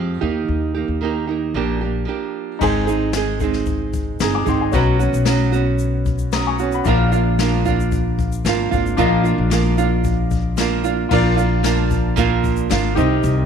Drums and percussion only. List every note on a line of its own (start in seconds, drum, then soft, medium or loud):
2.61 kick medium
2.61 crash medium
2.88 shaker soft
3.13 snare loud
3.13 shaker medium
3.40 kick medium
3.40 shaker soft
3.53 snare soft
3.66 kick medium
3.66 shaker medium
3.94 kick medium
3.94 shaker soft
4.20 snare loud
4.20 shaker medium
4.47 kick medium
4.47 shaker soft
4.73 kick loud
4.73 shaker medium
5.00 shaker soft
5.14 shaker medium
5.25 snare loud
5.25 shaker medium
5.53 shaker medium
5.79 shaker medium
6.06 kick medium
6.06 shaker soft
6.19 shaker soft
6.32 snare loud
6.32 shaker medium
6.59 shaker soft
6.72 shaker soft
6.85 kick loud
6.85 shaker medium
7.12 shaker soft
7.39 snare loud
7.39 shaker medium
7.66 kick medium
7.66 shaker medium
7.80 shaker soft
7.92 kick medium
7.92 shaker medium
8.19 kick medium
8.19 shaker soft
8.32 shaker medium
8.45 snare loud
8.45 shaker medium
8.72 kick medium
8.72 shaker soft
8.86 shaker soft
8.98 kick medium
8.98 shaker medium
9.25 shaker soft
9.51 snare loud
9.51 shaker medium
9.78 shaker medium
10.04 kick medium
10.04 shaker medium
10.31 kick medium
10.31 shaker soft
10.57 snare loud
10.57 shaker medium
10.84 shaker soft
11.11 kick loud
11.11 crash medium
11.38 shaker medium
11.64 snare loud
11.64 shaker medium
11.91 kick medium
11.91 shaker medium
12.17 kick loud
12.17 shaker medium
12.44 kick loud
12.44 shaker soft
12.57 shaker medium
12.70 snare loud
12.70 shaker medium
12.97 kick medium
12.97 shaker soft
13.24 kick loud
13.24 shaker medium